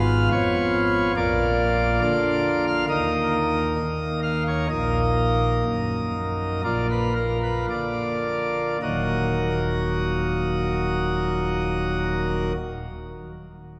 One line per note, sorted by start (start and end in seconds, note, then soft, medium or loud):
0.00 0.29 G#1 medium
0.00 0.29 G#2 medium
0.00 1.11 B3 medium
0.00 1.11 F4 medium
0.00 0.29 F5 loud
0.32 1.14 F2 medium
0.32 1.14 C#5 loud
1.17 2.00 A#1 medium
1.17 2.00 A#2 medium
1.17 2.85 A#3 medium
1.17 2.85 F4 medium
1.17 1.99 D5 loud
2.01 2.85 D3 medium
2.01 2.64 D5 loud
2.67 2.85 F5 loud
2.89 3.76 D#2 medium
2.89 3.76 D#3 medium
2.89 4.67 A#3 soft
2.89 4.67 D#4 medium
2.89 4.20 D#5 loud
3.78 4.67 D#2 medium
4.23 4.43 F5 loud
4.48 4.67 C#5 medium
4.70 5.63 A#1 medium
4.70 5.63 A#2 medium
4.70 6.61 A#3 soft
4.70 6.61 D#4 soft
4.70 6.61 D#5 loud
5.65 6.62 F#2 medium
6.64 7.66 A#1 medium
6.64 7.67 A#2 medium
6.64 8.77 A#3 soft
6.64 8.77 F4 soft
6.64 6.87 D5 medium
6.91 7.13 B4 medium
7.15 7.38 A#4 medium
7.43 7.66 B4 medium
7.70 8.78 D3 soft
7.70 8.79 D5 medium
8.82 12.52 D#1 medium
8.82 12.52 D#2 medium
8.82 12.52 A#2 soft
8.82 12.53 F#3 medium
8.82 12.52 A#3 soft
8.82 12.52 D#4 soft
8.82 12.53 F#4 medium
8.82 12.52 D#5 medium